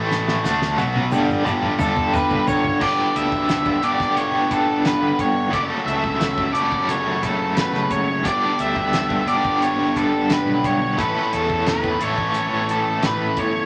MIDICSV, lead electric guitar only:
0, 0, Header, 1, 2, 480
1, 0, Start_track
1, 0, Tempo, 680272
1, 76, Time_signature, 4, 2, 24, 8
1, 9636, End_track
2, 0, Start_track
2, 0, Title_t, "Lead electric guitar"
2, 0, Program_c, 0, 29
2, 1268, Note_on_c, 0, 69, 84
2, 1507, Note_on_c, 0, 71, 87
2, 1514, Note_off_c, 0, 69, 0
2, 1746, Note_off_c, 0, 71, 0
2, 1749, Note_on_c, 0, 73, 94
2, 1985, Note_off_c, 0, 73, 0
2, 1988, Note_on_c, 0, 74, 92
2, 2230, Note_on_c, 0, 76, 88
2, 2233, Note_off_c, 0, 74, 0
2, 2709, Note_on_c, 0, 74, 87
2, 2720, Note_off_c, 0, 76, 0
2, 2938, Note_off_c, 0, 74, 0
2, 2941, Note_on_c, 0, 73, 88
2, 3184, Note_on_c, 0, 69, 77
2, 3188, Note_off_c, 0, 73, 0
2, 3424, Note_on_c, 0, 71, 89
2, 3430, Note_off_c, 0, 69, 0
2, 3667, Note_off_c, 0, 71, 0
2, 3670, Note_on_c, 0, 73, 85
2, 3889, Note_off_c, 0, 73, 0
2, 3904, Note_on_c, 0, 74, 93
2, 3968, Note_off_c, 0, 74, 0
2, 4134, Note_on_c, 0, 76, 87
2, 4590, Note_off_c, 0, 76, 0
2, 4607, Note_on_c, 0, 74, 92
2, 4855, Note_off_c, 0, 74, 0
2, 4858, Note_on_c, 0, 73, 88
2, 5099, Note_on_c, 0, 69, 77
2, 5108, Note_off_c, 0, 73, 0
2, 5341, Note_off_c, 0, 69, 0
2, 5344, Note_on_c, 0, 71, 84
2, 5567, Note_off_c, 0, 71, 0
2, 5583, Note_on_c, 0, 73, 86
2, 5827, Note_off_c, 0, 73, 0
2, 5830, Note_on_c, 0, 74, 96
2, 6051, Note_off_c, 0, 74, 0
2, 6073, Note_on_c, 0, 76, 98
2, 6547, Note_off_c, 0, 76, 0
2, 6550, Note_on_c, 0, 74, 90
2, 6772, Note_off_c, 0, 74, 0
2, 6792, Note_on_c, 0, 73, 88
2, 7037, Note_on_c, 0, 69, 76
2, 7038, Note_off_c, 0, 73, 0
2, 7280, Note_off_c, 0, 69, 0
2, 7283, Note_on_c, 0, 71, 82
2, 7516, Note_on_c, 0, 73, 84
2, 7524, Note_off_c, 0, 71, 0
2, 7760, Note_on_c, 0, 71, 85
2, 7761, Note_off_c, 0, 73, 0
2, 7995, Note_off_c, 0, 71, 0
2, 7998, Note_on_c, 0, 69, 75
2, 8240, Note_off_c, 0, 69, 0
2, 8243, Note_on_c, 0, 71, 83
2, 8480, Note_on_c, 0, 73, 89
2, 8486, Note_off_c, 0, 71, 0
2, 8932, Note_off_c, 0, 73, 0
2, 8969, Note_on_c, 0, 69, 73
2, 9210, Note_off_c, 0, 69, 0
2, 9213, Note_on_c, 0, 71, 76
2, 9447, Note_on_c, 0, 73, 84
2, 9454, Note_off_c, 0, 71, 0
2, 9636, Note_off_c, 0, 73, 0
2, 9636, End_track
0, 0, End_of_file